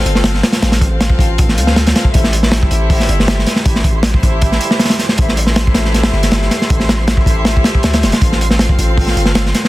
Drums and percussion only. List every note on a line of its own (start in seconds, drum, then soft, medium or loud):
0.06 closed hi-hat medium
0.15 snare soft
0.24 snare loud
0.24 closed hi-hat loud
0.34 snare soft
0.43 snare loud
0.43 closed hi-hat medium
0.52 snare loud
0.52 closed hi-hat medium
0.62 snare loud
0.62 closed hi-hat medium
0.72 snare loud
0.72 closed hi-hat medium
0.81 kick medium
0.81 closed hi-hat medium
1.01 snare loud
1.01 closed hi-hat medium
1.10 kick loud
1.19 kick loud
1.19 closed hi-hat medium
1.38 kick loud
1.38 closed hi-hat medium
1.49 snare soft
1.58 closed hi-hat medium
1.67 snare medium
1.76 snare loud
1.76 closed hi-hat medium
1.87 snare loud
1.87 closed hi-hat medium
1.96 snare loud
1.96 closed hi-hat medium
2.05 kick medium
2.14 kick loud
2.14 closed hi-hat medium
2.24 snare medium
2.33 closed hi-hat medium
2.43 snare medium
2.52 snare loud
2.52 closed hi-hat medium
2.63 kick medium
2.71 closed hi-hat medium
2.90 kick loud
2.90 open hi-hat medium
3.00 snare soft
3.09 closed hi-hat medium
3.20 snare soft
3.28 snare loud
3.28 closed hi-hat medium
3.39 snare soft
3.46 snare soft
3.46 closed hi-hat medium
3.56 snare soft
3.65 kick loud
3.65 closed hi-hat medium
3.76 snare medium
3.84 kick loud
3.84 closed hi-hat medium
4.03 snare loud
4.03 closed hi-hat loud
4.14 kick medium
4.23 kick medium
4.23 closed hi-hat medium
4.41 kick loud
4.41 closed hi-hat medium
4.52 snare soft
4.61 closed hi-hat medium
4.71 snare medium
4.79 snare medium
4.79 closed hi-hat medium
4.85 snare medium
4.85 closed hi-hat medium
4.90 snare loud
4.90 closed hi-hat medium
4.99 snare medium
4.99 closed hi-hat medium
5.09 snare soft
5.18 kick loud
5.18 closed hi-hat medium
5.29 snare soft
5.37 closed hi-hat medium
5.47 snare soft
5.56 snare loud
5.56 closed hi-hat medium
5.67 kick loud
5.74 snare loud
5.74 closed hi-hat medium
5.85 snare soft
5.94 snare soft
5.94 closed hi-hat medium
6.03 snare loud
6.03 closed hi-hat medium
6.13 snare soft
6.23 snare soft
6.23 closed hi-hat medium
6.31 snare loud
6.31 closed hi-hat medium
6.42 snare soft
6.51 snare medium
6.51 closed hi-hat medium
6.62 snare soft
6.70 kick loud
6.70 closed hi-hat medium
6.80 snare soft
6.89 snare loud
6.89 closed hi-hat medium
7.07 snare loud
7.07 closed hi-hat medium
7.17 kick medium
7.26 kick medium
7.26 closed hi-hat medium
7.45 snare loud
7.45 closed hi-hat medium
7.57 kick medium
7.64 snare loud
7.64 closed hi-hat medium
7.75 kick medium
7.83 snare loud
7.83 closed hi-hat medium
7.93 snare loud
7.93 closed hi-hat medium
8.03 snare loud
8.03 closed hi-hat medium
8.12 snare loud
8.12 closed hi-hat medium
8.22 kick loud
8.22 closed hi-hat medium
8.32 snare soft
8.41 closed hi-hat medium
8.51 snare medium
8.59 snare loud
8.59 closed hi-hat medium
8.69 kick loud
8.79 closed hi-hat medium
8.98 kick loud
8.98 open hi-hat medium
9.07 snare soft
9.17 closed hi-hat medium
9.25 snare soft
9.35 snare loud
9.35 closed hi-hat medium
9.46 snare soft
9.54 snare soft
9.54 closed hi-hat medium
9.65 snare soft